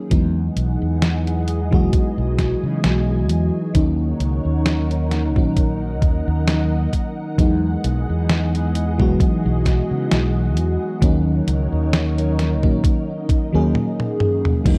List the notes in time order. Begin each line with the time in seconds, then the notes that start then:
Already playing: D#3 F#3 A#3 C#4 D#4 G#4
0.10 E2 E3 F#3 G#3 B3 D#4 G#4 D#5 F#5, kick, closed hi-hat
0.56 B1, closed hi-hat
0.82 E2
1.02 snare, closed hi-hat
1.27 closed hi-hat
1.48 closed hi-hat
1.71 E1 E3 F#3 G#3 B3 F#4, kick
1.93 G#5, kick, closed hi-hat
2.18 B1
2.38 kick, snare, closed hi-hat
2.63 C#3
2.84 B1, snare, closed hi-hat
3.29 E2, closed hi-hat
3.74 D#2 D#3 F#3 A#3 C#4 D#4 A#4 C#5 F#5, kick, closed hi-hat
4.20 C#2, closed hi-hat
4.45 D#2
4.66 snare, closed hi-hat
4.91 closed hi-hat
5.11 snare, closed hi-hat
5.35 A#1 D#3 F#3 A#3 C#4 D#4, kick
5.57 D#5, kick, closed hi-hat
6.02 D#2, kick, closed hi-hat
6.28 D#2
6.48 snare, closed hi-hat
6.93 kick, closed hi-hat
7.38 E2 E3 F#3 G#3 B3 D#4 G#4 D#5, kick, closed hi-hat
7.84 B1, closed hi-hat
8.09 E2
8.29 snare, closed hi-hat
8.55 closed hi-hat
8.75 closed hi-hat
8.98 E1 E3 F#3 G#3 B3 F#4, kick
9.20 kick, closed hi-hat
9.46 B1
9.66 kick, snare, closed hi-hat
9.91 C#3
10.11 B1, snare, closed hi-hat
10.57 E2, closed hi-hat
11.01 D#2 D#3 F#3 A#3 C#4 D#4 A#4 C#5, kick, closed hi-hat
11.47 C#2, closed hi-hat
11.72 D#2
11.93 snare, closed hi-hat
12.18 closed hi-hat
12.39 snare, closed hi-hat
12.63 A#1 D#3 F#3 A#3 C#4 D#4, kick
12.84 D#5, kick, closed hi-hat
13.29 kick, closed hi-hat
13.52 D#2 D#3 F#3 A#3 C#4 G#4
13.75 high tom
14.00 high tom
14.20 mid tom
14.45 mid tom
14.64 E2 E3 F#3 G#3 B3 D#4, kick, closed hi-hat, crash